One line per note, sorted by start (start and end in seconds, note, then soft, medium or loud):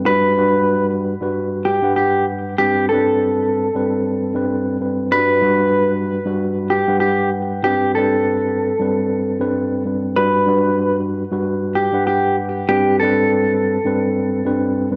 0.06 0.35 G2 loud
0.06 0.36 G3 medium
0.06 0.37 F#4 medium
0.06 0.85 B4 loud
0.06 0.37 B4 loud
0.36 1.12 G2 medium
0.36 1.13 G3 medium
0.36 1.13 F#4 medium
0.36 1.13 B4 loud
1.20 1.78 G2 medium
1.20 1.78 G3 medium
1.20 1.78 F#4 medium
1.20 1.79 B4 loud
1.65 1.93 G4 medium
1.82 2.53 G2 loud
1.82 2.54 G3 medium
1.82 2.54 B4 loud
1.82 2.54 F#5 medium
1.96 2.25 G4 medium
2.58 2.88 G2 medium
2.58 2.89 G3 medium
2.58 2.89 C4 medium
2.58 2.87 G4 loud
2.58 2.89 B4 loud
2.89 3.66 G2 medium
2.89 3.66 G3 medium
2.89 3.67 C4 medium
2.89 5.07 A4 medium
2.94 3.67 B4 loud
3.74 4.31 G2 medium
3.74 4.31 G3 medium
3.74 4.31 C4 medium
3.74 4.32 B4 loud
4.34 4.76 G2 medium
4.34 4.76 G3 medium
4.34 4.77 C4 medium
4.34 4.77 B4 loud
4.80 5.10 G2 medium
4.80 5.10 G3 medium
4.80 5.10 C4 medium
4.80 5.11 B4 medium
5.11 5.40 G2 loud
5.11 5.41 G3 medium
5.11 5.42 F#4 medium
5.11 5.91 B4 loud
5.11 5.42 B4 loud
5.42 6.17 G2 loud
5.42 6.18 G3 medium
5.42 6.18 F#4 medium
5.42 6.18 B4 loud
6.25 6.83 G2 medium
6.25 6.83 G3 medium
6.25 6.83 F#4 medium
6.25 6.84 B4 loud
6.70 6.98 G4 medium
6.87 7.59 G2 medium
6.87 7.59 G3 medium
6.87 7.60 B4 loud
6.87 7.59 F#5 medium
7.00 7.29 G4 medium
7.63 7.93 G2 medium
7.63 7.94 G3 medium
7.63 7.94 C4 medium
7.63 7.93 G4 loud
7.63 7.94 B4 loud
7.95 8.71 G2 medium
7.95 8.72 G3 medium
7.95 8.72 C4 medium
7.95 10.13 A4 medium
7.95 8.72 B4 loud
8.79 9.36 G2 medium
8.79 9.36 G3 medium
8.79 9.37 C4 medium
8.79 9.37 B4 loud
9.39 9.81 G2 medium
9.39 9.82 G3 medium
9.39 9.82 C4 medium
9.39 9.82 B4 loud
9.85 10.15 G2 medium
9.85 10.15 G3 medium
9.85 10.16 C4 medium
9.85 10.16 B4 medium
10.16 10.45 G2 medium
10.16 10.46 G3 medium
10.16 10.47 F#4 medium
10.16 10.96 B4 loud
10.16 10.47 B4 loud
10.47 11.23 G2 loud
10.47 11.23 G3 medium
10.47 11.23 F#4 medium
10.47 11.24 B4 loud
11.31 11.88 G2 medium
11.31 11.88 G3 medium
11.31 11.89 F#4 medium
11.31 11.89 B4 loud
11.75 12.04 G4 medium
11.92 12.64 G2 loud
11.92 12.64 G3 medium
11.92 12.65 B4 loud
11.92 12.65 F#5 medium
12.07 12.35 G4 medium
12.68 12.98 G2 medium
12.68 12.99 G3 medium
12.68 12.99 C4 medium
12.68 12.98 G4 loud
12.68 13.00 B4 loud
13.00 13.76 G2 loud
13.00 13.77 G3 medium
13.00 13.77 C4 medium
13.00 14.96 A4 medium
13.04 13.78 B4 loud
13.85 14.41 G2 medium
13.85 14.42 G3 medium
13.85 14.42 C4 medium
13.85 14.42 B4 loud
14.44 14.87 G2 medium
14.44 14.87 G3 medium
14.44 14.87 C4 medium
14.44 14.88 B4 loud
14.90 14.96 G2 medium
14.90 14.96 G3 medium
14.90 14.96 C4 medium
14.90 14.96 B4 medium